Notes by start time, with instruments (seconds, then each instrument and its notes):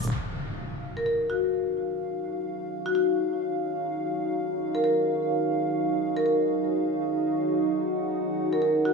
0.02 fm bass D#1, cabasa
0.11 ambient pad D#4, analog synth pad D#4 F#4 F5, crash, impact
0.23 ambient pad G#4
0.62 ambient pad C#5
0.76 ambient pad F#4
0.97 marimba A#4
1.06 marimba A#4
1.30 marimba F#4
2.86 marimba F#4
2.95 marimba F#4
4.54 ambient pad D#5
4.75 marimba A#4
4.84 marimba A#4
6.17 marimba A#4
6.26 marimba A#4
7.67 analog synth pad F#5
8.32 ambient pad F#5
8.53 marimba A#4
8.62 marimba A#4
8.85 marimba F#4